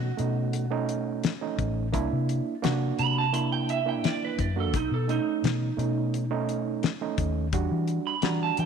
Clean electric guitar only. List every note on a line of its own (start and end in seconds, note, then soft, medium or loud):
0.00 1.55 F#4 loud
2.99 3.17 B5 medium
3.18 3.34 A5 medium
3.34 3.51 B5 medium
3.52 3.69 G5 medium
3.70 3.87 E5 loud
3.89 4.04 G5 medium
4.05 4.22 D5 loud
4.25 4.40 B4 medium
4.40 4.57 D5 medium
4.60 4.75 A4 medium
4.76 4.93 D#4 medium
4.94 5.09 A4 medium
5.10 7.15 D#4 loud
8.07 8.24 B5 medium
8.24 8.41 A#5 medium
8.43 8.58 A5 medium
8.60 8.65 G5 medium